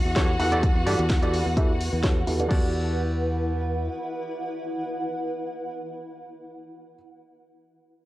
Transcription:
Already playing: ambient pad E4 B4 F#5, string section F#4 F#5
0.05 fingered electric bass E2
0.16 grand piano E3 F#4 G4 A4 C#5, kick, snare, closed hi-hat
0.40 fingered electric bass E2, grand piano E3 F#4 G4 A4 F#5, open hi-hat
0.52 grand piano E3 F#4 G4 A4 D5, closed hi-hat
0.63 kick, closed hi-hat
0.75 fingered electric bass E2
0.86 fingered electric bass G2, grand piano E3 F#4 G4 A4 D5, open hi-hat
0.99 fingered electric bass E2, closed hi-hat
1.10 kick, snare, closed hi-hat
1.22 grand piano E3 F#4 G4 A4 D5, closed hi-hat
1.34 open hi-hat
1.46 fingered electric bass E2
1.57 grand piano E3 F#4 G4 A4 E5, kick, closed hi-hat
1.80 open hi-hat
1.93 fingered electric bass E2
2.03 grand piano E3 F#4 G4 A4 C#5, kick, snare, closed hi-hat
2.27 fingered electric bass E2, grand piano E3 F#4 G4 A4 F#5, open hi-hat
2.39 grand piano E3 F#4 G4 A4 D5, closed hi-hat
2.50 fingered electric bass E2, ambient pad E4, grand piano F#4 G4 A4 D5, kick, crash
2.58 ambient pad B4
2.65 ambient pad F#5

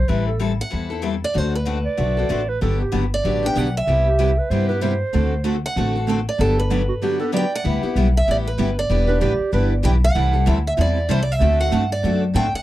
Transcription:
0.08 upright bass A1, steel-string acoustic guitar E3 G3 C4 E4 A4, clarinet B4
0.27 clarinet A4
0.39 steel-string acoustic guitar E3 G3 C4 E4 A4
0.61 steel-string acoustic guitar F#5
0.70 upright bass E2, steel-string acoustic guitar E3 G3 C4 E4 A4
0.90 steel-string acoustic guitar C4 E4 A4
1.02 steel-string acoustic guitar E3 G3 C4 E4 A4
1.24 steel-string acoustic guitar D5
1.34 upright bass D2, steel-string acoustic guitar D3 A3 C4 F#4 A4
1.38 steel-string acoustic guitar C5
1.55 steel-string acoustic guitar B4
1.65 steel-string acoustic guitar D3 A3 C4 F#4 A4
1.85 clarinet D5
1.97 upright bass B1, steel-string acoustic guitar D3 A3 C4 F#4 A4
2.17 steel-string acoustic guitar C4 F#4 A4
2.29 upright bass A1, steel-string acoustic guitar D3 A3 C4 F#4 A4
2.49 clarinet B4
2.61 upright bass G1, steel-string acoustic guitar D3 F#3 B3 D4 G4, clarinet A4
2.81 clarinet G4
2.92 upright bass G1, steel-string acoustic guitar D3 F#3 B3 D4 G4
3.14 steel-string acoustic guitar D5
3.24 upright bass A1, steel-string acoustic guitar D3 F#3 B3 D4 G4
3.43 steel-string acoustic guitar B3 D4 G4 G5
3.56 upright bass B1, steel-string acoustic guitar D3 F#3 B3 D4 G4 F#5
3.77 steel-string acoustic guitar E5
3.87 upright bass C2, steel-string acoustic guitar C3 G3 B3 E4 G4
4.06 clarinet G4
4.19 steel-string acoustic guitar C3 G3 B3 E4 G4
4.38 clarinet B4
4.50 upright bass G2, steel-string acoustic guitar C3 G3 B3 E4 G4, clarinet C5
4.68 steel-string acoustic guitar B3 E4 G4, clarinet B4
4.81 steel-string acoustic guitar C3 G3 B3 E4 G4, clarinet C5
5.13 upright bass D2, steel-string acoustic guitar D3 A3 C4 F#4 A4
5.44 steel-string acoustic guitar D3 A3 C4 F#4 A4
5.66 steel-string acoustic guitar F#5
5.76 upright bass A1, steel-string acoustic guitar D3 A3 C4 F#4 A4
5.96 steel-string acoustic guitar C4 F#4 A4
6.08 steel-string acoustic guitar D3 A3 C4 F#4 A4
6.29 steel-string acoustic guitar D5
6.39 upright bass G1, steel-string acoustic guitar D3 F#3 B3 D4 G4 A4
6.59 steel-string acoustic guitar B4
6.70 steel-string acoustic guitar D3 F#3 B3 D4 G4
6.88 clarinet F#4
7.02 steel-string acoustic guitar D3 F#3 B3 D4 G4, clarinet G4
7.19 steel-string acoustic guitar B3 D4 G4, clarinet A4
7.32 steel-string acoustic guitar D3 F#3 B3 D4 G4, clarinet D5
7.37 steel-string acoustic guitar G5
7.55 steel-string acoustic guitar F#5
7.65 upright bass D2, steel-string acoustic guitar G3 B3 E4 G4
7.83 steel-string acoustic guitar B3 E4 G4, muted upright bass stroke
7.96 upright bass B1, steel-string acoustic guitar G3 B3 E4 G4
8.17 steel-string acoustic guitar E5
8.28 upright bass A1, steel-string acoustic guitar G3 B3 E4 G4 D5
8.47 steel-string acoustic guitar B4
8.58 upright bass G1, steel-string acoustic guitar G3 B3 E4 G4
8.79 steel-string acoustic guitar D5
8.90 upright bass E1, steel-string acoustic guitar E3 G3 B3 D4 E4 G4 B4
9.07 steel-string acoustic guitar B3 D4 G4, clarinet B4
9.21 upright bass A1, steel-string acoustic guitar E3 G3 B3 D4 E4 G4 B4, clarinet G4
9.40 muted upright bass stroke
9.52 upright bass G1, steel-string acoustic guitar E3 G3 B3 D4 E4 G4 B4, clarinet B4
9.83 upright bass B1, steel-string acoustic guitar E3 G3 B3 D4 E4 G4 B4 G5
10.04 steel-string acoustic guitar F#5
10.15 upright bass C2, steel-string acoustic guitar C3 E3 G3 C4 E4 A4
10.33 steel-string acoustic guitar G3 C4 E4 A4
10.46 upright bass D2, steel-string acoustic guitar C3 E3 G3 C4 E4 A4
10.67 steel-string acoustic guitar E5
10.77 upright bass E2, steel-string acoustic guitar C3 E3 G3 C4 E4 A4 D5
11.09 upright bass C2, steel-string acoustic guitar C3 E3 G3 C4 E4 A4 C5
11.23 steel-string acoustic guitar D5
11.32 steel-string acoustic guitar E5
11.41 upright bass D2, steel-string acoustic guitar D3 A3 C4 F#4 A4
11.60 steel-string acoustic guitar C4 F#4 A4 F#5
11.72 upright bass G2, steel-string acoustic guitar D3 A3 C4 F#4 A4
11.92 steel-string acoustic guitar D5
12.04 upright bass F#2, steel-string acoustic guitar D3 A3 C4 F#4 A4
12.35 upright bass A2, steel-string acoustic guitar D3 A3 C4 F#4 A4 G5
12.54 steel-string acoustic guitar F#5, muted upright bass stroke

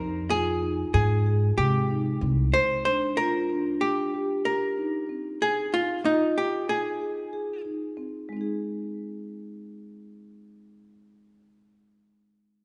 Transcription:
Already playing: upright bass F2, hollow-body jazz guitar A#4
0.00 marimba D#4
0.30 marimba F4, hollow-body jazz guitar G#4
0.62 marimba D#4
0.94 upright bass G#2, hollow-body jazz guitar G#4
1.26 marimba G#4
1.58 upright bass C3, marimba G#3, hollow-body jazz guitar G4
1.90 marimba D#4
2.21 upright bass C2, marimba C4
2.54 hollow-body jazz guitar C5
2.85 marimba D4, hollow-body jazz guitar C5
3.17 marimba F4, hollow-body jazz guitar A#4
3.50 marimba D4
3.81 hollow-body jazz guitar G4
4.14 marimba G4
4.45 marimba G4, hollow-body jazz guitar A#4
4.78 marimba D#4
5.09 marimba C4
5.42 hollow-body jazz guitar G#4
5.73 marimba D#4, hollow-body jazz guitar F4
6.05 hollow-body jazz guitar D#4, marimba F4
6.38 marimba D#4, hollow-body jazz guitar G4
6.69 hollow-body jazz guitar G#4
7.02 marimba G#4
7.33 marimba G#4
7.65 marimba D#4
7.97 marimba C4
8.29 marimba G#3 C4
8.37 marimba D#4
8.41 marimba G#4

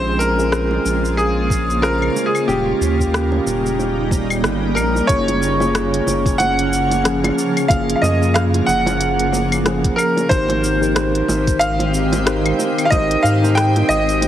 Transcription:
Already playing: analog synth bass A#1, ambient pad C#3 G#3 A#3 F4, tine electric piano C#4 F4 G#4 C5, grand piano C5
0.19 grand piano A#4, shaker
0.37 tine electric piano C#4 F4 G#4 A#4, shaker
0.52 cross-stick, shaker
0.71 high bongo
0.85 analog synth bass A#1, shaker
1.05 shaker
1.17 grand piano G#4, shaker
1.50 kick, shaker
1.70 shaker
1.82 tine electric piano C#4 F4 G#4 C5, grand piano A#4, cross-stick, shaker
2.02 claves
2.16 high bongo, shaker
2.26 grand piano G#4
2.35 claves, shaker
2.47 analog synth bass D#1, ambient pad G3 D#4, tine electric piano A#3 C#4 F4 G4, grand piano G4, shaker
2.81 analog synth bass D#2, shaker
2.98 tine electric piano A#3 C#4 F4 G4, kick, shaker
3.14 cross-stick, shaker
3.32 high bongo
3.46 analog synth bass D#1, shaker
3.66 shaker
3.79 high bongo, shaker
4.11 kick, high bongo, shaker
4.30 claves, shaker
4.44 analog synth bass G1, cross-stick, shaker
4.75 analog synth bass A#1, grand piano A#4, claves, shaker
4.95 high bongo, shaker
5.07 analog synth bass F#1, ambient pad C#3 F3 A#3 C#4, tine electric piano A#3 C#4 F4 G#4, grand piano C#5, kick, closed hi-hat, shaker
5.28 closed hi-hat, high bongo
5.43 shaker
5.59 tine electric piano A#3 C#4 F4 G#4, high bongo, shaker
5.75 cross-stick, closed hi-hat, shaker
5.94 closed hi-hat
6.07 analog synth bass F#1, high bongo, shaker
6.26 kick, closed hi-hat, shaker
6.38 grand piano F#5, closed hi-hat, high bongo, shaker
6.59 closed hi-hat
6.73 shaker
6.90 closed hi-hat, high bongo, shaker
7.04 tine electric piano F3 A#3 C#4 G#4, cross-stick, closed hi-hat, shaker
7.24 closed hi-hat, high bongo, claves
7.39 shaker
7.57 closed hi-hat, claves, shaker
7.68 analog synth bass F#1, tine electric piano A#3 C#4 F4 G#4, grand piano F5, kick, closed hi-hat, high bongo, shaker
7.90 closed hi-hat
7.96 grand piano F5
8.02 analog synth bass F#2, grand piano D#5, high bongo, shaker
8.20 tine electric piano A#3 C#4 F4 G#4, shaker
8.34 grand piano F5, cross-stick, closed hi-hat, shaker
8.54 closed hi-hat, high bongo
8.66 analog synth bass F#1, grand piano F#5, shaker
8.86 closed hi-hat, high bongo, shaker
9.01 closed hi-hat, shaker
9.19 closed hi-hat
9.33 high bongo, shaker
9.52 closed hi-hat, claves, shaker
9.64 tine electric piano F3 A#3 C#4 G#4, cross-stick, closed hi-hat, high bongo, shaker
9.84 kick, closed hi-hat
9.96 grand piano A#4, claves, shaker
10.17 closed hi-hat, high bongo, shaker
10.29 analog synth bass G#1, ambient pad D#3 G#3 C4 G4, tine electric piano D#4 G4 A#4 C5, grand piano C5, kick, closed hi-hat, shaker
10.49 closed hi-hat, high bongo
10.64 shaker
10.81 tine electric piano D#4 G4 A#4 C5, shaker
10.96 cross-stick, closed hi-hat, high bongo, shaker
11.15 closed hi-hat
11.28 analog synth bass G#1, high bongo, shaker
11.47 kick, closed hi-hat, shaker
11.59 grand piano F5, closed hi-hat, shaker
11.79 closed hi-hat, high bongo
11.94 shaker
12.12 closed hi-hat, high bongo, shaker
12.25 tine electric piano D#4 G4 A#4 C5, cross-stick, closed hi-hat, shaker
12.46 closed hi-hat, claves
12.59 high bongo, shaker
12.78 closed hi-hat, claves, shaker
12.85 grand piano F5
12.90 analog synth bass G#1, tine electric piano D#4 G4 A#4 C5, grand piano D#5, kick, closed hi-hat, high bongo, shaker
13.11 closed hi-hat
13.23 analog synth bass G#2, grand piano F5, shaker
13.42 tine electric piano D#4 G4 A#4 C5, high bongo, shaker
13.55 grand piano G5, cross-stick, closed hi-hat, shaker
13.76 closed hi-hat, high bongo
13.89 analog synth bass G#1, grand piano D#5, shaker
14.09 closed hi-hat, shaker
14.22 closed hi-hat, high bongo, shaker

